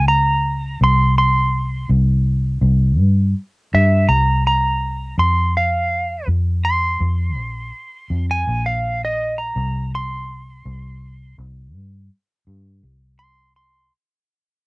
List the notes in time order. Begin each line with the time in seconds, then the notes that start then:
Already playing: C#2
0.08 A#5
0.81 C2 C6
1.18 C6
1.89 C2
2.61 C2
2.99 G2
3.74 G2 E5
4.09 C2 A#5
4.47 A#5
5.18 F2 C6
5.57 F5
6.28 F2
6.65 C6
7.00 F2
7.37 A#1
8.10 F2
8.31 G#5
8.47 A#1
8.66 F5
9.05 D#5
9.38 A#5
9.56 C2
9.95 C6
10.65 C2
11.38 C2
11.75 G2
12.47 G2
12.83 C2
13.19 C6
13.56 C6